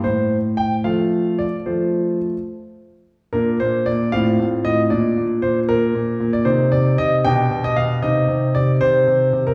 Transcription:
<<
  \new Staff \with { instrumentName = "Grand piano" } { \time 6/8 \key bes \major \tempo 4. = 76 << { c''4 g''8 f''4 d''8 | c''4. r4. | bes'8 c''8 d''8 f''4 ees''8 | d''4 c''8 bes'4~ bes'16 d''16 |
c''8 d''8 ees''8 g''8. ees''16 f''8 | ees''4 d''8 c''4~ c''16 bes'16 | } \\ { r2. | r2. | <d' f'>4. <c' f'>4. | <d' f'>2. |
ees'4. <d' g'>4. | <ees' g'>2. | } >> }
  \new Staff \with { instrumentName = "Grand piano" } { \clef bass \time 6/8 \key bes \major a,4. <f a f'>4. | <f a f'>4. r4. | bes,8 bes,8 bes,8 a,8 a,8 a,8 | bes,8 bes,8 bes,8 bes,8 bes,8 bes,8 |
c8 c8 c8 b,8 b,8 b,8 | c8 c8 c8 c8 c8 c8 | }
>>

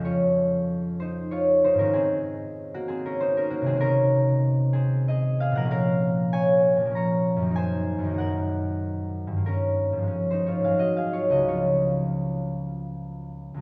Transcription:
<<
  \new Staff \with { instrumentName = "Harp" } { \time 3/4 \key des \major \tempo 4 = 95 <f' aes' des'' ees''>4. <ees' c''>8 <f' des''>8 <ees' c''>16 <des' bes'>16 | <c' aes'>4~ <c' aes'>16 <bes ges'>16 <c' aes'>16 <des' bes'>16 <ees' c''>16 <des' bes'>16 <bes ges'>16 <c' aes'>16 | <des' bes'>4. <c' aes'>8 <aes' ees''>8 <aes' f''>16 <bes' ges''>16 | <bes' f''>4 <des'' aes''>4 <des'' bes''>4 |
<c'' aes''>4 <bes' ges''>2 | <des' bes'>4~ <des' bes'>16 <ees' c''>16 <f' des''>16 <aes' f''>16 <ges' ees''>16 <aes' f''>16 <f' des''>16 <ges' ees''>16 | <f' des''>2. | }
  \new Staff \with { instrumentName = "Harp" } { \clef bass \time 3/4 \key des \major <f, f aes des'>2. | <aes, ees aes>2. | <c ees aes c'>2. | <bes, f bes des'>2 <bes, f bes des'>4 |
<ges, ees bes ees'>4 <ges, ees bes ees'>2 | <g, ees bes>4 <aes, f aes des'>4 <aes, ges aes c'>4 | <des, f aes des'>2. | }
>>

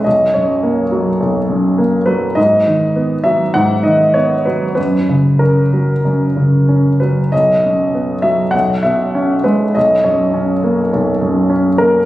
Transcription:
<<
  \new Staff \with { instrumentName = "Grand piano" } { \time 4/4 \key fis \mixolydian \tempo 4 = 101 dis''8 cis''2~ cis''8 r8 b'8 | dis''4. e''8 fis''8 dis''8 cis''8 b'8 | b'4 ais'2~ ais'8 b'8 | dis''4. e''8 fis''8 e''4 b'8 |
dis''8 cis''2~ cis''8 r8 ais'8 | }
  \new Staff \with { instrumentName = "Grand piano" } { \clef bass \time 4/4 \key fis \mixolydian b,,8 fis,8 ais8 fis8 b,,8 fis,8 ais8 fis8 | gis,8 dis8 b8 fis8 gis,8 dis8 b8 fis8 | fis,8 cis8 cis'8 fis8 fis,8 cis8 cis'8 fis8 | b,,8 fis,8 b8 fis8 b,,8 b,8 cis'8 gis8 |
b,,8 fis,8 cis'8 ais8 b,,8 fis,8 cis'8 ais8 | }
>>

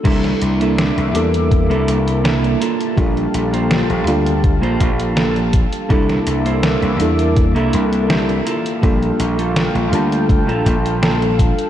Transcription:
<<
  \new Staff \with { instrumentName = "Analog synth pad" } { \time 4/4 \key c \mixolydian \tempo 4 = 82 << { <bes e'' d'''>2.~ <bes e'' d'''>8 <g' f''>8~ | <g' f''>1 | <bes e'' d'''>2.~ <bes e'' d'''>8 <a' f''>8~ | <a' f''>1 | } \\ { a''1~ | a''1~ | a''2.~ a''8 g''8~ | g''1 | } >> }
  \new Staff \with { instrumentName = "Clean electric guitar" } { \time 4/4 \key c \mixolydian <bes d' e' a'>8 r16 <bes d' e' a'>8. r8. <bes d' e' a'>16 r8 <bes d' e' a'>8 <bes f' a'>8~ | <bes f' a'>8 r16 <bes f' c''>8. r8. <bes f' c''>16 r8 <bes f' a'>8 r8 | <bes d' e' a'>8 r16 <bes d' e' c''>8. r8. <bes d' e' a'>16 r8 <bes d' e' g'>8 <bes f' a'>8~ | <bes f' a'>8 r16 <bes f' a'>8. r8. <bes f' a'>16 r8 <bes f' a'>8 r8 | }
  \new Staff \with { instrumentName = "FM electric piano" } { \time 4/4 \key c \mixolydian <g bes d' e' a'>4. <g bes d' e' a'>2 r8 | <g bes d' f' a'>4. <g bes d' f' a'>2~ <g bes d' f' a'>8 | <g bes d' e' a'>4. <g bes d' e' a'>2 r8 | <g bes d' f' a'>4. <g bes d' f' a''>2~ <g bes d' f' a''>8 | }
  \new Staff \with { instrumentName = "Slap bass" } { \clef bass \time 4/4 \key c \mixolydian c,16 r16 c,8. c,16 e,8. c,16 c,4 r8 | bes,,16 r16 bes,,8. bes,,16 d,8. bes,,16 bes,,4~ bes,,16 r16 | c,16 r16 c,8. c,16 e,8. c,16 c,4 r8 | bes,,16 r16 bes,,8. bes,,16 d,8. bes,,16 bes,,4~ bes,,16 r16 | }
  \new DrumStaff \with { instrumentName = "Drums" } \drummode { \time 4/4 <cymc hh bd>16 <hh sn>16 hh16 hh16 <hh sn>16 hh16 hh16 hh16 <hh bd>16 hh16 hh16 hh16 <hh sn>16 hh16 hh16 hh16 | <hh bd>16 hh16 hh16 hh16 <hh sn>16 hh16 hh16 hh16 <hh bd>16 hh16 <hh bd>16 hh16 <hh sn>16 hh16 <hh bd>16 hh16 | <hh bd>16 <hh sn>16 hh16 hh16 <hh sn>16 hh16 hh16 hh16 <hh bd>16 hh16 hh16 hh16 <hh sn>16 hh16 hh16 hh16 | <hh bd>16 hh16 hh16 hh16 <hh sn>16 hh16 hh16 hh16 <hh bd>16 hh16 <hh bd>16 hh16 <hh sn>16 hh16 <hh bd>16 hh16 | }
>>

